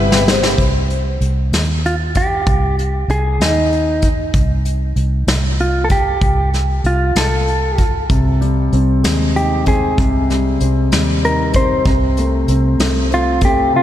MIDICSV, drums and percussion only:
0, 0, Header, 1, 2, 480
1, 0, Start_track
1, 0, Tempo, 626305
1, 447, Time_signature, 6, 3, 24, 8
1, 10598, End_track
2, 0, Start_track
2, 0, Title_t, "Drums"
2, 93, Note_on_c, 9, 38, 76
2, 169, Note_off_c, 9, 38, 0
2, 214, Note_on_c, 9, 38, 99
2, 291, Note_off_c, 9, 38, 0
2, 332, Note_on_c, 9, 38, 98
2, 409, Note_off_c, 9, 38, 0
2, 446, Note_on_c, 9, 42, 53
2, 448, Note_on_c, 9, 36, 85
2, 523, Note_off_c, 9, 42, 0
2, 524, Note_off_c, 9, 36, 0
2, 691, Note_on_c, 9, 42, 40
2, 767, Note_off_c, 9, 42, 0
2, 930, Note_on_c, 9, 42, 43
2, 1007, Note_off_c, 9, 42, 0
2, 1173, Note_on_c, 9, 42, 69
2, 1178, Note_on_c, 9, 38, 87
2, 1250, Note_off_c, 9, 42, 0
2, 1255, Note_off_c, 9, 38, 0
2, 1422, Note_on_c, 9, 42, 37
2, 1498, Note_off_c, 9, 42, 0
2, 1647, Note_on_c, 9, 42, 64
2, 1653, Note_on_c, 9, 36, 58
2, 1724, Note_off_c, 9, 42, 0
2, 1729, Note_off_c, 9, 36, 0
2, 1889, Note_on_c, 9, 42, 61
2, 1891, Note_on_c, 9, 36, 94
2, 1965, Note_off_c, 9, 42, 0
2, 1968, Note_off_c, 9, 36, 0
2, 2135, Note_on_c, 9, 42, 42
2, 2212, Note_off_c, 9, 42, 0
2, 2373, Note_on_c, 9, 42, 51
2, 2449, Note_off_c, 9, 42, 0
2, 2613, Note_on_c, 9, 42, 75
2, 2619, Note_on_c, 9, 38, 83
2, 2690, Note_off_c, 9, 42, 0
2, 2695, Note_off_c, 9, 38, 0
2, 2853, Note_on_c, 9, 42, 42
2, 2930, Note_off_c, 9, 42, 0
2, 3081, Note_on_c, 9, 42, 67
2, 3087, Note_on_c, 9, 36, 57
2, 3158, Note_off_c, 9, 42, 0
2, 3163, Note_off_c, 9, 36, 0
2, 3323, Note_on_c, 9, 42, 63
2, 3325, Note_on_c, 9, 36, 93
2, 3399, Note_off_c, 9, 42, 0
2, 3402, Note_off_c, 9, 36, 0
2, 3565, Note_on_c, 9, 42, 44
2, 3641, Note_off_c, 9, 42, 0
2, 3803, Note_on_c, 9, 42, 49
2, 3880, Note_off_c, 9, 42, 0
2, 4043, Note_on_c, 9, 42, 78
2, 4049, Note_on_c, 9, 38, 94
2, 4120, Note_off_c, 9, 42, 0
2, 4125, Note_off_c, 9, 38, 0
2, 4288, Note_on_c, 9, 42, 39
2, 4365, Note_off_c, 9, 42, 0
2, 4518, Note_on_c, 9, 42, 64
2, 4523, Note_on_c, 9, 36, 59
2, 4594, Note_off_c, 9, 42, 0
2, 4600, Note_off_c, 9, 36, 0
2, 4763, Note_on_c, 9, 36, 85
2, 4764, Note_on_c, 9, 42, 61
2, 4840, Note_off_c, 9, 36, 0
2, 4841, Note_off_c, 9, 42, 0
2, 5008, Note_on_c, 9, 42, 39
2, 5013, Note_on_c, 9, 38, 30
2, 5085, Note_off_c, 9, 42, 0
2, 5090, Note_off_c, 9, 38, 0
2, 5244, Note_on_c, 9, 42, 49
2, 5320, Note_off_c, 9, 42, 0
2, 5486, Note_on_c, 9, 42, 77
2, 5491, Note_on_c, 9, 38, 90
2, 5562, Note_off_c, 9, 42, 0
2, 5568, Note_off_c, 9, 38, 0
2, 5730, Note_on_c, 9, 42, 37
2, 5807, Note_off_c, 9, 42, 0
2, 5963, Note_on_c, 9, 42, 65
2, 5966, Note_on_c, 9, 36, 60
2, 6040, Note_off_c, 9, 42, 0
2, 6043, Note_off_c, 9, 36, 0
2, 6206, Note_on_c, 9, 36, 96
2, 6206, Note_on_c, 9, 42, 65
2, 6282, Note_off_c, 9, 42, 0
2, 6283, Note_off_c, 9, 36, 0
2, 6451, Note_on_c, 9, 42, 42
2, 6528, Note_off_c, 9, 42, 0
2, 6686, Note_on_c, 9, 42, 50
2, 6763, Note_off_c, 9, 42, 0
2, 6929, Note_on_c, 9, 42, 83
2, 6935, Note_on_c, 9, 38, 92
2, 7006, Note_off_c, 9, 42, 0
2, 7011, Note_off_c, 9, 38, 0
2, 7176, Note_on_c, 9, 42, 41
2, 7253, Note_off_c, 9, 42, 0
2, 7403, Note_on_c, 9, 42, 60
2, 7411, Note_on_c, 9, 36, 61
2, 7480, Note_off_c, 9, 42, 0
2, 7487, Note_off_c, 9, 36, 0
2, 7648, Note_on_c, 9, 42, 66
2, 7650, Note_on_c, 9, 36, 96
2, 7724, Note_off_c, 9, 42, 0
2, 7726, Note_off_c, 9, 36, 0
2, 7894, Note_on_c, 9, 42, 40
2, 7898, Note_on_c, 9, 38, 30
2, 7970, Note_off_c, 9, 42, 0
2, 7975, Note_off_c, 9, 38, 0
2, 8127, Note_on_c, 9, 42, 49
2, 8203, Note_off_c, 9, 42, 0
2, 8369, Note_on_c, 9, 42, 76
2, 8374, Note_on_c, 9, 38, 96
2, 8445, Note_off_c, 9, 42, 0
2, 8451, Note_off_c, 9, 38, 0
2, 8616, Note_on_c, 9, 42, 42
2, 8693, Note_off_c, 9, 42, 0
2, 8840, Note_on_c, 9, 42, 63
2, 8848, Note_on_c, 9, 36, 71
2, 8917, Note_off_c, 9, 42, 0
2, 8924, Note_off_c, 9, 36, 0
2, 9083, Note_on_c, 9, 42, 66
2, 9086, Note_on_c, 9, 36, 105
2, 9159, Note_off_c, 9, 42, 0
2, 9163, Note_off_c, 9, 36, 0
2, 9327, Note_on_c, 9, 42, 48
2, 9404, Note_off_c, 9, 42, 0
2, 9565, Note_on_c, 9, 42, 55
2, 9642, Note_off_c, 9, 42, 0
2, 9806, Note_on_c, 9, 42, 78
2, 9811, Note_on_c, 9, 38, 95
2, 9882, Note_off_c, 9, 42, 0
2, 9888, Note_off_c, 9, 38, 0
2, 10052, Note_on_c, 9, 42, 40
2, 10129, Note_off_c, 9, 42, 0
2, 10278, Note_on_c, 9, 42, 67
2, 10283, Note_on_c, 9, 36, 65
2, 10355, Note_off_c, 9, 42, 0
2, 10359, Note_off_c, 9, 36, 0
2, 10598, End_track
0, 0, End_of_file